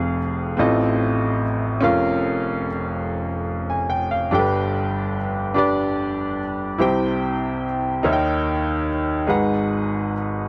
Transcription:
Already playing: F1 F2 C4 F4 G#4 F5
0.57 A1 A2 C4 F4 A4 D#5
1.81 F1 F2 C#4 F4 A#4 F5
3.70 G#5
3.90 G5
4.11 F5
4.31 G1 G2 D4 G4 A4 G5
4.39 B4
5.54 D4 G4 B4 D5
6.78 C2 C3 E4 G4 C5 G5
8.03 D#2 D#3 D#4 A#4 C#5 E5
8.13 G5
9.27 G#1 G#2 D#4 G#4 B4 F#5

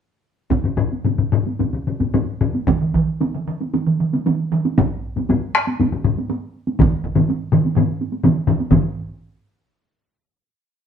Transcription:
0.50 taiko, taiko low-mid, taiko high
0.64 taiko low-mid
0.77 taiko low-mid
0.92 taiko high
1.05 taiko low-mid, taiko high
1.18 taiko low-mid
1.32 taiko low-mid
1.46 taiko high
1.59 taiko low-mid, taiko high
1.73 taiko low-mid
1.87 taiko low-mid
2.00 taiko low-mid, taiko high
2.14 taiko low-mid, taiko high
2.41 taiko low-mid
2.54 taiko high
2.67 taiko, taiko mid, taiko high
2.81 taiko mid
2.94 taiko, taiko mid
3.21 taiko mid, taiko high
3.34 taiko mid
3.47 taiko mid
3.61 taiko high
3.74 taiko mid, taiko high
3.87 taiko mid
4.00 taiko mid
4.13 taiko mid, taiko high
4.26 taiko mid, taiko high
4.52 taiko mid
4.65 taiko high
4.78 taiko, taiko low-mid, taiko high
5.16 taiko low-mid, taiko high
5.29 taiko low-mid, taiko high
5.55 taiko rim
5.67 taiko high
5.80 taiko low-mid, taiko high
5.92 taiko low-mid
6.04 taiko low-mid
6.17 taiko high
6.30 taiko high
6.67 taiko high
6.79 taiko, taiko low-mid, taiko mid, taiko high
7.04 taiko
7.16 taiko low-mid, taiko mid, taiko high
7.29 taiko high
7.52 taiko low-mid, taiko mid
7.65 taiko high
7.76 taiko low-mid, taiko mid, taiko high
8.01 taiko high
8.13 taiko high
8.24 taiko low-mid, taiko mid, taiko high
8.47 taiko low-mid, taiko mid
8.60 taiko high
8.71 taiko, taiko low-mid, taiko mid, taiko high

